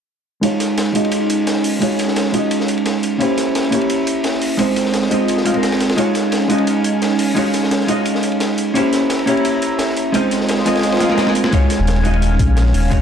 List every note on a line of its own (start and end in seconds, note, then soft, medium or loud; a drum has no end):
0.41 0.92 G#3 medium
0.41 4.55 C#4 medium
0.41 0.93 D#4 medium
0.41 3.17 D#4 medium
0.41 0.93 F4 medium
0.41 0.94 F#4 medium
0.41 0.94 C#5 loud
0.41 3.17 F5 medium
0.41 3.17 G#5 medium
0.41 closed hi-hat medium
0.41 ride medium
0.60 snare soft
0.60 closed hi-hat medium
0.60 ride medium
0.78 snare loud
0.78 closed hi-hat medium
0.78 ride medium
0.86 ride soft
0.93 1.79 G#3 medium
0.93 1.79 D#4 medium
0.93 1.80 F4 medium
0.93 1.80 F#4 medium
0.93 1.80 D#5 loud
0.93 closed hi-hat medium
0.93 ride medium
1.05 ride soft
1.12 closed hi-hat medium
1.12 ride medium
1.30 closed hi-hat medium
1.30 ride medium
1.47 snare loud
1.47 closed hi-hat medium
1.47 ride medium
1.56 snare soft
1.64 closed hi-hat medium
1.64 open hi-hat medium
1.80 2.31 G#3 medium
1.80 2.31 D#4 medium
1.80 2.32 F4 medium
1.80 2.32 F#4 medium
1.80 2.33 C#5 loud
1.80 closed hi-hat medium
1.80 ride medium
1.99 snare soft
1.99 closed hi-hat medium
1.99 ride medium
2.08 snare medium
2.16 snare loud
2.16 closed hi-hat medium
2.16 ride medium
2.25 snare soft
2.32 3.18 G#3 medium
2.32 3.18 D#4 medium
2.32 3.18 F4 medium
2.32 3.19 F#4 medium
2.32 3.19 D#5 loud
2.32 closed hi-hat medium
2.32 ride medium
2.51 closed hi-hat medium
2.51 ride medium
2.60 snare medium
2.68 closed hi-hat medium
2.68 ride medium
2.78 ride soft
2.86 snare loud
2.86 closed hi-hat medium
2.86 ride medium
3.03 closed hi-hat medium
3.03 ride medium
3.19 3.70 A#3 medium
3.19 3.70 C#4 medium
3.19 3.70 E4 medium
3.19 3.71 G4 medium
3.19 3.71 C5 loud
3.19 4.58 E5 medium
3.19 4.58 A#5 medium
3.19 closed hi-hat medium
3.19 ride medium
3.38 snare soft
3.38 closed hi-hat medium
3.38 ride medium
3.55 snare loud
3.55 closed hi-hat medium
3.55 ride medium
3.64 ride soft
3.71 4.56 A#3 medium
3.71 4.57 C#4 medium
3.71 4.57 E4 medium
3.71 4.58 G4 medium
3.71 4.58 C#5 loud
3.71 closed hi-hat medium
3.71 ride medium
3.81 ride soft
3.90 closed hi-hat medium
3.90 ride medium
4.07 closed hi-hat medium
4.07 ride medium
4.24 snare loud
4.24 closed hi-hat medium
4.24 ride medium
4.33 snare soft
4.42 closed hi-hat medium
4.42 open hi-hat medium
4.57 5.08 G#3 medium
4.57 5.09 C4 medium
4.57 5.09 D#4 medium
4.57 5.96 F4 medium
4.57 5.10 F4 medium
4.57 5.96 C5 medium
4.57 5.10 C5 loud
4.57 5.96 D#5 medium
4.57 8.71 G#5 medium
4.57 closed hi-hat medium
4.57 ride medium
4.76 snare soft
4.76 closed hi-hat medium
4.76 ride medium
4.85 snare medium
4.93 snare loud
4.93 closed hi-hat medium
4.93 ride medium
5.02 snare medium
5.10 5.44 G#3 medium
5.10 5.44 C4 medium
5.10 5.44 D#4 medium
5.10 5.44 F4 medium
5.10 5.45 D#5 medium
5.10 closed hi-hat medium
5.10 ride medium
5.28 closed hi-hat medium
5.28 ride medium
5.37 snare medium
5.45 5.52 G#3 medium
5.45 5.52 C4 medium
5.45 5.53 D#4 medium
5.45 5.53 F4 medium
5.45 5.53 F5 medium
5.45 closed hi-hat medium
5.45 ride medium
5.53 5.95 G#3 medium
5.53 5.95 C4 medium
5.53 5.96 D#4 medium
5.53 5.96 F4 medium
5.53 5.97 A#4 medium
5.53 ride soft
5.63 snare loud
5.63 closed hi-hat medium
5.63 ride medium
5.72 snare medium
5.72 ride medium
5.80 snare medium
5.80 closed hi-hat medium
5.80 ride medium
5.89 snare loud
5.89 ride medium
5.96 6.47 G#3 loud
5.96 10.10 C#4 medium
5.96 6.47 D#4 medium
5.96 8.73 D#4 medium
5.96 6.48 F4 medium
5.96 6.48 F#4 medium
5.96 6.49 C#5 loud
5.96 8.73 F5 medium
5.96 closed hi-hat medium
5.96 ride medium
6.15 snare soft
6.15 closed hi-hat medium
6.15 ride medium
6.32 snare loud
6.32 closed hi-hat medium
6.32 ride medium
6.42 ride soft
6.48 7.34 G#3 medium
6.48 7.34 D#4 medium
6.48 7.35 F4 medium
6.48 7.35 F#4 medium
6.48 7.35 D#5 loud
6.48 closed hi-hat medium
6.48 ride medium
6.58 ride soft
6.67 closed hi-hat medium
6.67 ride medium
6.84 closed hi-hat medium
6.84 ride medium
7.02 snare loud
7.02 closed hi-hat medium
7.02 ride medium
7.10 snare soft
7.19 closed hi-hat medium
7.19 open hi-hat medium
7.35 7.86 G#3 medium
7.35 7.86 D#4 medium
7.35 7.87 F4 medium
7.35 7.87 F#4 medium
7.35 7.87 C#5 loud
7.35 closed hi-hat medium
7.35 ride medium
7.53 snare soft
7.53 closed hi-hat medium
7.53 ride medium
7.63 snare medium
7.71 snare loud
7.71 closed hi-hat medium
7.71 ride medium
7.80 snare medium
7.87 8.72 G#3 medium
7.87 8.73 D#4 medium
7.87 8.73 F4 medium
7.87 8.74 F#4 medium
7.87 8.74 D#5 loud
7.87 closed hi-hat medium
7.87 ride medium
8.05 closed hi-hat medium
8.05 ride medium
8.15 snare medium
8.23 closed hi-hat medium
8.23 ride medium
8.32 ride soft
8.40 snare loud
8.40 closed hi-hat medium
8.40 ride medium
8.58 closed hi-hat medium
8.58 ride medium
8.74 9.25 A#3 medium
8.74 9.25 C#4 medium
8.74 9.25 E4 medium
8.74 9.26 G4 medium
8.74 9.26 C5 loud
8.74 10.13 E5 medium
8.74 10.13 A#5 medium
8.74 closed hi-hat medium
8.74 ride medium
8.93 snare medium
8.93 closed hi-hat medium
8.93 ride medium
9.10 snare loud
9.10 closed hi-hat medium
9.10 ride medium
9.19 ride soft
9.26 10.11 A#3 medium
9.26 10.12 C#4 medium
9.26 10.12 E4 medium
9.26 10.13 G4 medium
9.26 10.13 C#5 loud
9.26 closed hi-hat medium
9.26 ride medium
9.37 ride soft
9.45 closed hi-hat medium
9.45 ride medium
9.62 closed hi-hat medium
9.62 ride medium
9.79 snare loud
9.79 closed hi-hat medium
9.79 ride medium
9.89 snare soft
9.97 closed hi-hat medium
9.97 ride medium
10.12 10.63 G#3 medium
10.12 10.64 C4 medium
10.12 10.64 D#4 medium
10.12 11.51 F4 medium
10.12 10.64 F4 medium
10.12 11.51 C5 medium
10.12 10.65 C5 loud
10.12 11.51 D#5 medium
10.12 13.02 G#5 medium
10.12 closed hi-hat medium
10.12 ride medium
10.31 snare soft
10.31 closed hi-hat medium
10.31 ride medium
10.41 snare soft
10.49 snare loud
10.49 closed hi-hat medium
10.49 ride medium
10.58 snare medium
10.65 10.99 G#3 medium
10.65 10.99 C4 medium
10.65 10.99 D#4 medium
10.65 10.99 F4 medium
10.65 11.00 D#5 medium
10.65 snare loud
10.65 closed hi-hat medium
10.65 ride medium
10.75 snare medium
10.75 ride medium
10.79 snare medium
10.79 ride medium
10.83 snare loud
10.83 closed hi-hat medium
10.83 ride medium
10.83 swell medium
10.92 snare medium
10.92 ride medium
10.97 11.07 G#3 medium
10.97 snare medium
10.97 ride medium
11.00 11.07 C4 medium
11.00 11.08 D#4 medium
11.00 11.08 F4 medium
11.00 11.08 F5 medium
11.00 snare medium
11.00 closed hi-hat medium
11.00 ride medium
11.08 11.50 G#3 medium
11.08 11.50 C4 medium
11.08 11.51 D#4 medium
11.08 11.51 F4 medium
11.08 11.52 A#4 medium
11.08 snare medium
11.08 ride soft
11.17 snare loud
11.17 snare medium
11.17 closed hi-hat medium
11.17 ride medium
11.27 snare medium
11.35 closed hi-hat medium
11.35 ride medium
11.44 snare medium
11.51 12.02 G#3 medium
11.51 13.02 C#4 medium
11.51 12.02 D#4 medium
11.51 12.03 F4 medium
11.51 12.03 F#4 medium
11.51 12.04 C#5 loud
11.51 13.02 F5 medium
11.51 kick loud
11.51 closed hi-hat medium
11.51 ride medium
11.70 snare soft
11.70 closed hi-hat medium
11.70 ride medium
11.79 12.38 D#1 medium
11.87 snare loud
11.87 closed hi-hat medium
11.87 ride medium
11.96 ride soft
12.03 12.88 G#3 medium
12.03 12.89 D#4 medium
12.03 12.90 F4 medium
12.03 12.90 F#4 medium
12.03 12.90 D#5 loud
12.03 closed hi-hat medium
12.03 ride medium
12.13 ride soft
12.22 closed hi-hat medium
12.22 ride medium
12.39 12.73 A#1 medium
12.39 kick loud
12.39 closed hi-hat loud
12.39 ride medium
12.56 snare loud
12.56 closed hi-hat medium
12.56 ride medium
12.66 snare soft
12.74 13.02 D#1 loud
12.74 closed hi-hat medium
12.74 open hi-hat medium
12.90 13.02 G#3 medium
12.90 13.02 D#4 medium
12.90 13.02 F4 medium
12.90 13.02 F#4 medium
12.90 13.02 C#5 loud
12.90 kick loud
12.90 closed hi-hat medium
12.90 ride medium